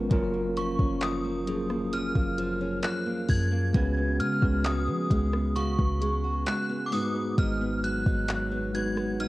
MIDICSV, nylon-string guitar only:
0, 0, Header, 1, 2, 480
1, 0, Start_track
1, 0, Tempo, 909091
1, 57, Time_signature, 4, 2, 24, 8
1, 4900, End_track
2, 0, Start_track
2, 0, Title_t, "Nylon-string guitar"
2, 0, Program_c, 0, 24
2, 0, Note_on_c, 0, 44, 80
2, 0, Note_on_c, 0, 53, 58
2, 0, Note_on_c, 0, 59, 59
2, 0, Note_on_c, 0, 61, 74
2, 55, Note_off_c, 0, 44, 0
2, 57, Note_on_c, 0, 42, 83
2, 58, Note_off_c, 0, 61, 0
2, 60, Note_on_c, 0, 61, 71
2, 105, Note_off_c, 0, 59, 0
2, 177, Note_on_c, 0, 58, 61
2, 294, Note_off_c, 0, 53, 0
2, 297, Note_on_c, 0, 53, 61
2, 416, Note_off_c, 0, 61, 0
2, 418, Note_on_c, 0, 61, 72
2, 532, Note_off_c, 0, 53, 0
2, 538, Note_on_c, 0, 53, 71
2, 651, Note_off_c, 0, 58, 0
2, 657, Note_on_c, 0, 58, 61
2, 772, Note_off_c, 0, 53, 0
2, 778, Note_on_c, 0, 53, 64
2, 891, Note_off_c, 0, 58, 0
2, 897, Note_on_c, 0, 58, 63
2, 1011, Note_off_c, 0, 42, 0
2, 1018, Note_on_c, 0, 42, 83
2, 1019, Note_off_c, 0, 61, 0
2, 1021, Note_on_c, 0, 61, 67
2, 1132, Note_off_c, 0, 58, 0
2, 1138, Note_on_c, 0, 58, 62
2, 1251, Note_off_c, 0, 53, 0
2, 1257, Note_on_c, 0, 53, 66
2, 1375, Note_off_c, 0, 61, 0
2, 1377, Note_on_c, 0, 61, 73
2, 1490, Note_off_c, 0, 53, 0
2, 1496, Note_on_c, 0, 53, 72
2, 1610, Note_off_c, 0, 58, 0
2, 1616, Note_on_c, 0, 58, 64
2, 1730, Note_off_c, 0, 53, 0
2, 1737, Note_on_c, 0, 53, 61
2, 1851, Note_off_c, 0, 58, 0
2, 1857, Note_on_c, 0, 58, 61
2, 1977, Note_on_c, 0, 49, 86
2, 1978, Note_off_c, 0, 61, 0
2, 1980, Note_on_c, 0, 66, 74
2, 2025, Note_off_c, 0, 42, 0
2, 2025, Note_off_c, 0, 53, 0
2, 2025, Note_off_c, 0, 58, 0
2, 2095, Note_on_c, 0, 59, 59
2, 2215, Note_on_c, 0, 56, 63
2, 2332, Note_off_c, 0, 66, 0
2, 2334, Note_on_c, 0, 66, 70
2, 2451, Note_off_c, 0, 56, 0
2, 2453, Note_on_c, 0, 56, 75
2, 2571, Note_off_c, 0, 59, 0
2, 2573, Note_on_c, 0, 59, 62
2, 2692, Note_off_c, 0, 56, 0
2, 2694, Note_on_c, 0, 56, 64
2, 2811, Note_off_c, 0, 59, 0
2, 2813, Note_on_c, 0, 59, 59
2, 2927, Note_off_c, 0, 49, 0
2, 2933, Note_on_c, 0, 49, 86
2, 2934, Note_off_c, 0, 66, 0
2, 2936, Note_on_c, 0, 66, 69
2, 3052, Note_off_c, 0, 59, 0
2, 3054, Note_on_c, 0, 59, 63
2, 3172, Note_off_c, 0, 56, 0
2, 3174, Note_on_c, 0, 56, 68
2, 3292, Note_off_c, 0, 66, 0
2, 3294, Note_on_c, 0, 66, 68
2, 3412, Note_off_c, 0, 56, 0
2, 3414, Note_on_c, 0, 56, 72
2, 3532, Note_off_c, 0, 59, 0
2, 3534, Note_on_c, 0, 59, 66
2, 3653, Note_on_c, 0, 44, 77
2, 3703, Note_off_c, 0, 49, 0
2, 3772, Note_off_c, 0, 59, 0
2, 3775, Note_on_c, 0, 59, 61
2, 3889, Note_off_c, 0, 44, 0
2, 3895, Note_on_c, 0, 44, 89
2, 3896, Note_off_c, 0, 66, 0
2, 3898, Note_on_c, 0, 63, 75
2, 4014, Note_off_c, 0, 59, 0
2, 4016, Note_on_c, 0, 59, 61
2, 4134, Note_off_c, 0, 56, 0
2, 4137, Note_on_c, 0, 54, 60
2, 4250, Note_off_c, 0, 63, 0
2, 4256, Note_on_c, 0, 63, 71
2, 4370, Note_off_c, 0, 54, 0
2, 4376, Note_on_c, 0, 54, 74
2, 4494, Note_off_c, 0, 59, 0
2, 4496, Note_on_c, 0, 59, 65
2, 4610, Note_off_c, 0, 54, 0
2, 4616, Note_on_c, 0, 54, 61
2, 4734, Note_off_c, 0, 59, 0
2, 4736, Note_on_c, 0, 59, 62
2, 4849, Note_off_c, 0, 44, 0
2, 4852, Note_off_c, 0, 63, 0
2, 4856, Note_on_c, 0, 44, 83
2, 4859, Note_on_c, 0, 63, 72
2, 4900, Note_off_c, 0, 44, 0
2, 4900, Note_off_c, 0, 54, 0
2, 4900, Note_off_c, 0, 59, 0
2, 4900, Note_off_c, 0, 63, 0
2, 4900, End_track
0, 0, End_of_file